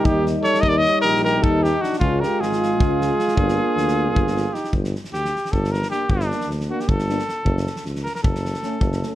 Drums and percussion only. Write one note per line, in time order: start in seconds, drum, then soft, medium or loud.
0.05 kick loud
0.26 snare soft
0.44 snare soft
0.54 snare soft
0.63 kick medium
0.85 snare soft
1.04 snare soft
1.15 snare soft
1.26 snare soft
1.44 kick loud
1.64 snare soft
1.83 snare soft
1.93 snare soft
2.01 kick medium
2.23 snare soft
2.42 snare soft
2.52 snare soft
2.63 snare soft
2.80 kick loud
3.01 snare soft
3.19 snare soft
3.28 snare soft
3.37 kick loud
3.48 snare soft
3.77 snare soft
3.88 snare soft
4.16 kick medium
4.27 snare soft
4.37 snare soft
4.54 snare soft
4.64 snare soft
4.73 kick medium
4.84 snare soft
4.95 snare soft
5.04 snare soft
5.14 snare soft
5.25 snare soft
5.36 snare soft
5.45 snare soft
5.53 kick medium
5.64 snare soft
5.74 snare soft
5.82 snare soft
5.91 snare soft
6.10 kick medium
6.20 snare soft
6.31 snare soft
6.41 snare soft
6.50 snare soft
6.60 snare soft
6.80 snare soft
6.89 kick loud
6.99 snare soft
7.09 snare soft
7.19 snare soft
7.29 snare soft
7.46 kick medium
7.57 snare soft
7.67 snare soft
7.76 snare soft
7.85 snare soft
7.95 snare soft
8.06 snare soft
8.15 snare soft
8.24 kick loud
8.35 snare soft
8.45 snare soft
8.54 snare soft
8.63 snare soft
8.81 kick loud
8.92 snare soft
9.03 snare soft